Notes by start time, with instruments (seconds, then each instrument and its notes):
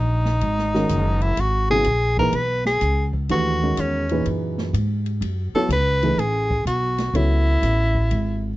Already playing: upright bass A#1, tenor saxophone D#4
0.25 snare
0.41 upright bass G#1, ride
0.58 snare
0.74 grand piano D#3 G#3 C#4 F#4 A#4, snare
0.89 upright bass F#1, hi-hat pedal, ride
1.21 tenor saxophone E4, ride
1.37 upright bass G#1, tenor saxophone F#4, ride
1.70 grand piano C#3 F#3 B3 E4 G#4, tenor saxophone G#4
1.84 upright bass A#1, hi-hat pedal, ride
2.17 grand piano E3 A#3 D#4 G#4 B4, tenor saxophone A#4, kick
2.32 upright bass B1, tenor saxophone B4, ride
2.65 tenor saxophone G#4, snare
2.81 upright bass C#2, hi-hat pedal, ride
3.13 kick
3.29 upright bass D#2, grand piano E3 A3 D4 G4 B4, tenor saxophone F#4, ride
3.63 grand piano D#3 G#3 C#4 F#4 A#4
3.77 upright bass E2, tenor saxophone C#4, hi-hat pedal, ride
4.09 grand piano A#2 E3 D#4 G#4 B4, ride
4.26 upright bass F#2, ride
4.58 snare
4.73 upright bass G#2, hi-hat pedal, ride
5.06 ride
5.21 upright bass F#2, ride
5.54 grand piano F#3 B3 E4 A4 C#5, tenor saxophone A4, muted upright bass stroke
5.69 upright bass C#2, hi-hat pedal, ride
5.73 tenor saxophone B4
6.02 grand piano E3 A3 D#4 G#4 B4, ride
6.17 upright bass A1, tenor saxophone G#4, ride
6.51 kick
6.65 upright bass B1, tenor saxophone F#4, hi-hat pedal, ride
6.98 snare, ride
7.13 upright bass C#2, grand piano F#3 B3 E4 A4 C#5, tenor saxophone E4, ride
7.62 upright bass A1, hi-hat pedal, ride
7.95 kick
8.11 upright bass G#1, ride